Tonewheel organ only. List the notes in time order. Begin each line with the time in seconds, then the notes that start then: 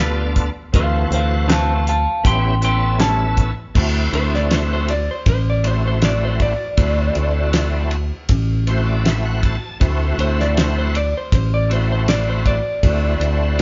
Already playing: B3 D4 F4 A4
0.73 E3 C4 F#4 A4
2.23 B3 C#4 E4 G4
2.61 B3 C#4 E4 A4
3.74 A3 C4 E4 F#4
5.63 A3 C4 E4 F#4
6.77 A3 C4 E4 F#4
8.67 A3 C4 E4 F#4 C5
8.87 D5
9.04 E5
9.25 F#5
9.43 A5
9.80 A3 C4 E4 F#4
11.69 A3 C4 E4 F#4
12.83 A3 C4 E4 F#4